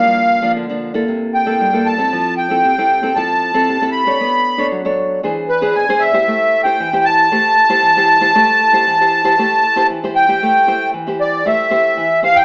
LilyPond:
<<
  \new Staff \with { instrumentName = "Accordion" } { \time 4/4 \key a \minor \tempo 4 = 116 f''4 r4. g''4 a''8~ | a''8 g''4. a''4. b''8~ | b''4 r4. b'8 gis''8 e''8~ | e''8. g''8. a''2~ a''8~ |
a''2. r8 g''8~ | g''4 r8 d''8 e''4. f''16 g''16 | }
  \new Staff \with { instrumentName = "Nylon-string guitar" } { \time 4/4 \key a \minor << { <f bes d'>8. <f bes d'>8 <f bes d'>8 <bes e' a'>4 <bes e' a'>8 <bes e' a'>8 <c' e' a'>16~ | <c' e' a'>8. <c' e' a'>8 <c' e' a'>8 <c' e' a'>16 <c' e' a'>8. <c' e' a'>8 <c' e' a'>8 <d' a' cis''>16~ | <d' a' cis''>8. <d' a' cis''>8 <d' a' cis''>8. <d' gis' c''>8 r16 <d' gis' c''>8 <d' gis' c''>8 <e' g' c''>16~ | <e' g' c''>8. <e' g' c''>8 <e' g' c''>8. <e' g' c''>8 r16 <e' g' c''>8 <e' g' c''>8 <e' g' c''>16 |
<e' g' c''>8 r16 <e' g' c''>8 <e' g' c''>8 <e' g' c''>16 <e' g' c''>8 r16 <e' g' c''>8 <e' g' c''>8 <e' g' c''>16~ | <e' g' c''>8 <e' g' c''>8 r16 <e' g' c''>8. <e' g' c''>8 <e' g' c''>8. r16 <e' g' c''>8 | } \\ { g,4 d4 c4 g,4 | f4 c4 f4 c4 | b4 fis4 e4 b,4 | a4 e4 a4 e4 |
a4 e4 a4 e4 | a4 e4 a4 e4 | } >> }
>>